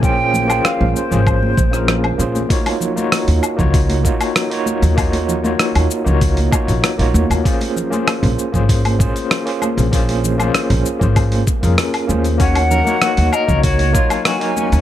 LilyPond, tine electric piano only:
\new Staff \with { instrumentName = "Tine electric piano" } { \time 4/4 \key ees \dorian \tempo 4 = 97 <bes des' f' aes' c''>8. <bes des' f' aes' c''>4 <bes des' f' aes' c''>8. r16 <bes des' f' aes' bes'>8. <bes des' f' aes' c''>8 | <bes ees' f' ges' des''>8. <bes ees' f' ges' des''>4 <bes ees' f' ges' des''>8. <bes ees' f' ges' des''>8. <bes ees' f' ges' des''>8. | <bes ees' f' ges' des''>8. <bes ees' f' ges' des''>4 <bes ees' f' ges' des''>8. <bes ees' f' ges' des''>8. <bes ees' f' ges' des''>8. | <bes des' f' aes' c''>8. <bes des' f' aes' c''>4 <bes des' f' aes' c''>8. <bes des' f' aes' c''>8. <bes des' f' aes' c''>8. |
<bes des' f' aes' c''>8. <bes des' f' aes' c''>4 <bes des' f' aes' c''>8. r16 <bes des' f' aes' bes'>8. <bes des' f' aes' c''>8 | <bes des' ees' ges' des''>8. <bes ees' ges' des'' ges''>4 <bes ees' ges' des'' f''>8. <ges bes ees' des'' f''>8. <ges bes ees' des'' f''>8. | }